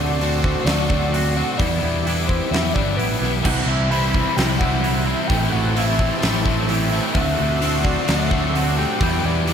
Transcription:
Already playing: fingered electric bass D2, overdriven electric guitar D3 A3 C4 F#4, analog synth pad F#4 D5 C6, soft synth lead D5
0.00 overdriven electric guitar A3 C4
0.19 overdriven electric guitar D3 A3 C4 F#4, open hi-hat
0.42 overdriven electric guitar C4 F#4, soft synth lead C5, kick
0.46 overdriven electric guitar A3
0.65 fingered electric bass D2, overdriven electric guitar D3 A3 C4 F#4, clean electric guitar A3, soft synth lead D5, snare, open hi-hat
0.88 overdriven electric guitar A3 C4 F#4, clean electric guitar C4, kick
1.11 overdriven electric guitar D3 A3 C4 F#4, open hi-hat
1.33 overdriven electric guitar A3 C4 F#4, soft synth lead F#5
1.57 overdriven electric guitar E2 B2 E3 G3 B3, fingered electric bass E2, analog synth pad G4 E5 D6, soft synth lead D5, kick, open hi-hat
1.61 overdriven electric guitar E4
1.82 fingered electric bass E2, overdriven electric guitar G3 B3 E4
2.04 overdriven electric guitar E3 G3 B3 E4, clean electric guitar D4, open hi-hat
2.27 overdriven electric guitar G3 B3 E4, soft synth lead C5, kick
2.51 fingered electric bass E2, overdriven electric guitar E2 B2 E3 G3 B3 E4, clean electric guitar B3, soft synth lead E5, snare, open hi-hat
2.74 fingered electric bass G1, overdriven electric guitar E3 G3 B3 E4, clean electric guitar D4, soft synth lead D5, kick
2.96 fingered electric bass A1, overdriven electric guitar E3 G3 B3 E4, clean electric guitar G4, soft synth lead B4, open hi-hat
3.19 fingered electric bass B1, overdriven electric guitar G3 B3 E4, clean electric guitar D4
3.23 overdriven electric guitar E3, snare
3.41 fingered electric bass C2, overdriven electric guitar C3 E3 G3 C4 E4, analog synth pad E4 C5 B5, soft synth lead F#5, kick, crash
3.65 fingered electric bass C2, overdriven electric guitar C3 G3 C4 E4, soft synth lead E5
3.69 overdriven electric guitar C4
3.88 overdriven electric guitar C3 E3 G3 C4 E4, soft synth lead B5, open hi-hat
4.12 overdriven electric guitar C3 G3 C4 E4, kick
4.36 fingered electric bass C2, overdriven electric guitar C3 E3 G3 C4 E4, clean electric guitar E3, soft synth lead G5, snare, open hi-hat
4.58 overdriven electric guitar C3 G3 C4 E4, clean electric guitar E4, soft synth lead F#5, kick
4.62 overdriven electric guitar G3
4.80 overdriven electric guitar C3 E3 G3 C4 E4, clean electric guitar G4, open hi-hat
4.85 overdriven electric guitar G3 C4
5.04 overdriven electric guitar C3 G3 C4 E4, soft synth lead E5
5.27 fingered electric bass A1, overdriven electric guitar A2 E3 A3 C4 E4, analog synth pad G4 C5 A5, soft synth lead G5, kick, open hi-hat
5.50 fingered electric bass A1, overdriven electric guitar A2 E3 A3 C4 E4, soft synth lead F#5
5.55 overdriven electric guitar A3
5.73 overdriven electric guitar A2 E3 A3 C4 E4, soft synth lead E5, open hi-hat
5.78 overdriven electric guitar A3
5.98 overdriven electric guitar A2 E3 A3 C4 E4, kick
6.22 fingered electric bass A1, overdriven electric guitar A2 E3 A3 C4 E4, clean electric guitar E3, snare, open hi-hat
6.44 overdriven electric guitar A2 E3 A3 C4 E4, clean electric guitar C4, kick
6.67 overdriven electric guitar A2 E3 A3 C4 E4, clean electric guitar G4, open hi-hat
6.88 overdriven electric guitar A2 C4 E4
6.92 overdriven electric guitar E3 A3
7.13 fingered electric bass D2, overdriven electric guitar D3 A3 C4 F#4, clean electric guitar F#3, soft synth lead E5, kick, open hi-hat
7.17 overdriven electric guitar D4, analog synth pad F#4 D5 C6
7.37 fingered electric bass D2, overdriven electric guitar D3 A3 C4 D4 F#4
7.61 overdriven electric guitar D3 A3 C4 D4 F#4, open hi-hat
7.83 overdriven electric guitar D3 A3 C4 D4 F#4, soft synth lead D5, kick
8.06 fingered electric bass D2, overdriven electric guitar D3 A3 C4 D4 F#4, clean electric guitar F#3, soft synth lead E5, snare, open hi-hat
8.30 overdriven electric guitar D3 A3 C4 D4 F#4, clean electric guitar C4, kick
8.53 overdriven electric guitar D3 A3 C4 D4 F#4, open hi-hat
8.77 overdriven electric guitar D3 A3 C4 D4 F#4, soft synth lead G5, snare
8.98 overdriven electric guitar E2 B2 E3 G3 B3, fingered electric bass E2, analog synth pad G4 E5 D6, kick, open hi-hat
9.02 overdriven electric guitar E3 E4
9.23 overdriven electric guitar E2 B2 E3 G3 B3 E4, fingered electric bass E2, soft synth lead D5
9.46 overdriven electric guitar E2 B2 E3 G3 B3 E4, clean electric guitar D4, soft synth lead E5, open hi-hat

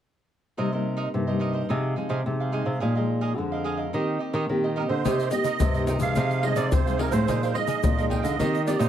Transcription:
0.57 nylon-string guitar C3 G3 A#3 D#4, cavaquinho D#4 A#4 C5 D#5
0.72 nylon-string guitar G3 A#3 D#4, cavaquinho A#4 C5 D#5
0.97 cavaquinho D#4 A#4 C5 D#5
1.13 nylon-string guitar G2 C3 G3 A#3 D#4
1.27 nylon-string guitar G3 A#3 D#4, cavaquinho A#4 C5 D#5
1.39 cavaquinho D#4 A#4 C5 D#5
1.53 cavaquinho A#4 C5 D#5
1.69 nylon-string guitar C3 F3 G#3 D#4, cavaquinho D#4 G#4 C5 F5
1.96 nylon-string guitar F3 G#3 D#4, cavaquinho D#4 G#4 C5 F5
2.09 nylon-string guitar C3, cavaquinho D#4 G#4 C5 F5
2.26 nylon-string guitar C3 F3 G#3 D#4
2.40 cavaquinho G#4 C5 F5
2.52 nylon-string guitar F3 G#3 D#4, cavaquinho D#4 G#4 C5 F5
2.65 nylon-string guitar C3, cavaquinho G#4 C5 F5
2.80 nylon-string guitar A#2 F3 G#3 D#4, cavaquinho G#4 A#4 D#5 F5
2.95 nylon-string guitar F3 G#3 D#4, cavaquinho A#4 D#5 F5
3.21 cavaquinho G#4 A#4 D#5 F5
3.37 nylon-string guitar F2 D3 F3 G#3
3.52 cavaquinho A#4 D#5 F5
3.64 cavaquinho G#4 A#4 D#5 F5
3.77 cavaquinho A#4 D#5 F5
3.93 nylon-string guitar D#3 A#3 C4 G4, cavaquinho D#4 G4 C5 D#5
4.19 cavaquinho D#4 G4 C5 D#5
4.33 nylon-string guitar D#3, cavaquinho D#4 G4 C5 D#5
4.49 nylon-string guitar A#2 D#3 A#3 C4 G4
4.64 cavaquinho G4 C5 D#5
4.76 nylon-string guitar A#3 C4 G4, cavaquinho D#4 G4 C5 D#5, accordion A#4
4.89 nylon-string guitar D3, cavaquinho G4 C5 D#5, accordion C5
5.05 nylon-string guitar C3 A#3 D#4 G4, cavaquinho D#4 A#4 C5 D#5, pandeiro, shaker, surdo
5.20 cavaquinho A#4 C5 D#5, pandeiro, shaker
5.31 nylon-string guitar A#3 D#4 G4, accordion D#5, pandeiro, shaker
5.44 cavaquinho D#4 A#4 C5 D#5, pandeiro, shaker
5.60 nylon-string guitar G2 C3, pandeiro, shaker, surdo
5.74 nylon-string guitar A#3 D#4 G4, cavaquinho A#4 C5 D#5, pandeiro, shaker
5.87 cavaquinho D#4 A#4 C5 D#5, accordion G5, pandeiro, shaker
6.00 nylon-string guitar C3 F3 G#3 D#4, cavaquinho A#4 C5 D#5, accordion F5, pandeiro, shaker
6.16 nylon-string guitar C3, cavaquinho D#4 G#4 C5 F5, pandeiro, shaker, surdo
6.31 pandeiro, shaker
6.42 nylon-string guitar F3 G#3 D#4, cavaquinho D#4 G#4 C5 F5, accordion D#5, pandeiro
6.55 nylon-string guitar C3, cavaquinho D#4 G#4 C5 F5, accordion D5, pandeiro, shaker
6.72 nylon-string guitar C3, accordion C5, pandeiro, shaker, surdo
6.86 nylon-string guitar F3 G#3 D#4, cavaquinho G#4 C5 F5, pandeiro, shaker
6.98 cavaquinho D#4 G#4 C5 F5, accordion A#4, pandeiro
7.11 nylon-string guitar A2 F3 G#3 D#4, cavaquinho G#4 C5 F5, accordion C5, pandeiro, shaker
7.27 nylon-string guitar A#2, cavaquinho G#4 A#4 D#5 F5, pandeiro, shaker, surdo
7.43 cavaquinho A#4 D#5 F5, pandeiro, shaker
7.54 nylon-string guitar F3 G#3 D#4, accordion D#5, pandeiro
7.67 cavaquinho G#4 A#4 D#5 F5, pandeiro, shaker
7.83 nylon-string guitar F2 A#2, pandeiro, shaker, surdo
7.97 nylon-string guitar F3 G#3 D#4, cavaquinho A#4 D#5 F5, pandeiro, shaker
8.10 cavaquinho G#4 A#4 D#5 F5, accordion G5, pandeiro, surdo
8.22 nylon-string guitar D3, cavaquinho A#4 D#5 F5, accordion D#5, pandeiro, shaker
8.39 nylon-string guitar D#3 A#3 C4 G4, cavaquinho D#4 G4 C5 D#5, pandeiro, shaker, surdo
8.55 pandeiro, shaker
8.66 nylon-string guitar A#3 C4 G4, cavaquinho D#4 G4 C5 D#5, accordion D5, pandeiro, shaker
8.79 nylon-string guitar A#2, cavaquinho D#4 G4 C5 D#5, accordion C5, pandeiro, shaker

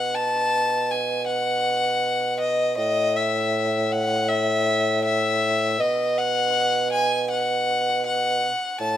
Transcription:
Already playing: bassoon B2, violin F#5
0.15 violin A5
0.91 violin G#5
1.27 violin F#5
2.40 violin D#5
2.77 bassoon A2, violin D#5
3.16 violin E5
3.91 violin F#5
4.29 violin E5
5.05 violin E5
5.79 bassoon B2, violin D#5
6.18 violin F#5
6.92 violin G#5
7.31 violin F#5
8.06 violin F#5
8.81 bassoon A2, violin A5

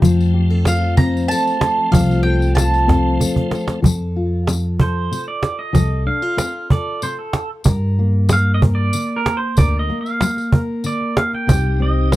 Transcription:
Already playing: steel-string acoustic guitar C4
0.02 upright bass F2, steel-string acoustic guitar F3, tonewheel organ F3 A3 C4, cajon bass, tambourine
0.18 cajon slap, tambourine
0.34 steel-string acoustic guitar G4
0.50 steel-string acoustic guitar A4
0.65 steel-string acoustic guitar F4, mandolin F5, cajon slap, tambourine
0.81 cajon slap
0.97 steel-string acoustic guitar C4, mandolin A#5, cajon bass, tambourine
1.17 tambourine
1.28 steel-string acoustic guitar A4, mandolin A5, tambourine
1.47 tambourine
1.61 steel-string acoustic guitar A4, cajon slap, tambourine
1.78 cajon slap
1.91 upright bass C2, steel-string acoustic guitar F3, mandolin F5, cajon bass, tambourine
2.10 cajon slap, tambourine
2.23 steel-string acoustic guitar A4, mandolin G5
2.41 cajon slap, tambourine
2.55 steel-string acoustic guitar F4, mandolin A5, cajon slap, tambourine
2.73 cajon slap, tambourine
2.87 steel-string acoustic guitar C4 A4, cajon bass, cajon slap, tambourine
3.20 steel-string acoustic guitar A4, cajon bass, tambourine
3.36 cajon bass
3.51 steel-string acoustic guitar A4, cajon slap, tambourine
3.68 cajon slap, tambourine
3.82 upright bass F2, steel-string acoustic guitar F3 A4, cajon bass, tambourine
4.16 steel-string acoustic guitar F4
4.47 steel-string acoustic guitar C4, cajon slap, tambourine
4.80 steel-string acoustic guitar A4, pedal steel guitar C5, cajon bass
5.11 steel-string acoustic guitar C3, tambourine
5.28 pedal steel guitar D5
5.43 cajon slap, tambourine
5.59 pedal steel guitar D#5
5.73 upright bass C2, steel-string acoustic guitar F3 A4, cajon bass, tambourine
6.06 steel-string acoustic guitar D4, pedal steel guitar F5
6.22 steel-string acoustic guitar F4
6.37 steel-string acoustic guitar C4, cajon slap, tambourine
6.70 steel-string acoustic guitar A4, pedal steel guitar D5, cajon bass
7.02 steel-string acoustic guitar C3, pedal steel guitar C5, tambourine
7.19 pedal steel guitar A4
7.33 cajon slap, tambourine
7.64 steel-string acoustic guitar G2 A#4, upright bass G2, cajon bass, tambourine
7.99 steel-string acoustic guitar A#3
8.29 steel-string acoustic guitar G3, pedal steel guitar F5, cajon slap, tambourine
8.54 pedal steel guitar D#5
8.62 steel-string acoustic guitar A#4, cajon bass
8.75 pedal steel guitar D5
8.93 steel-string acoustic guitar D3, tambourine
9.16 pedal steel guitar A#4
9.26 cajon slap, tambourine
9.37 pedal steel guitar C5
9.57 upright bass D2, steel-string acoustic guitar G2 A#4, pedal steel guitar D5, cajon bass, tambourine
9.79 pedal steel guitar D#5
9.89 steel-string acoustic guitar A#3, cajon slap
10.01 pedal steel guitar F5
10.06 tambourine
10.21 steel-string acoustic guitar G3, cajon slap, tambourine
10.37 cajon slap, tambourine
10.52 steel-string acoustic guitar A#4, cajon bass
10.84 steel-string acoustic guitar D3, pedal steel guitar D5, tambourine
11.01 cajon slap
11.17 pedal steel guitar F5, cajon slap
11.33 pedal steel guitar G5, cajon slap
11.47 upright bass C2, steel-string acoustic guitar C3 G4, tonewheel organ C3 G3 D#4, cajon bass, tambourine
11.80 steel-string acoustic guitar C4, pedal steel guitar D#5
12.12 steel-string acoustic guitar G3, cajon slap

